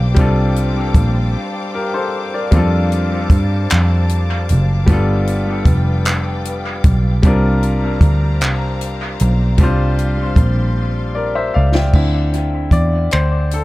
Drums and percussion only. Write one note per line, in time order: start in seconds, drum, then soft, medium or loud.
0.16 kick loud
0.16 closed hi-hat medium
0.56 closed hi-hat soft
0.94 kick medium
0.94 closed hi-hat medium
2.52 kick loud
2.52 closed hi-hat medium
2.92 closed hi-hat soft
3.30 kick loud
3.30 closed hi-hat medium
3.70 clap loud
3.70 closed hi-hat medium
4.09 closed hi-hat medium
4.49 closed hi-hat medium
4.87 kick loud
4.87 closed hi-hat medium
5.27 closed hi-hat soft
5.65 kick loud
5.65 closed hi-hat medium
6.05 clap loud
6.05 closed hi-hat medium
6.45 closed hi-hat medium
6.84 kick loud
6.84 closed hi-hat medium
7.23 kick loud
7.23 closed hi-hat medium
7.63 closed hi-hat soft
8.01 kick loud
8.01 closed hi-hat medium
8.41 clap loud
8.41 closed hi-hat medium
8.81 closed hi-hat medium
9.19 closed hi-hat medium
9.58 kick loud
9.58 closed hi-hat medium
9.99 closed hi-hat soft
10.36 kick medium
10.36 closed hi-hat medium
11.75 snare loud
11.94 kick loud
11.94 crash medium
12.33 closed hi-hat soft
12.71 kick medium
12.71 closed hi-hat medium
13.11 finger snap loud
13.11 closed hi-hat medium
13.51 closed hi-hat medium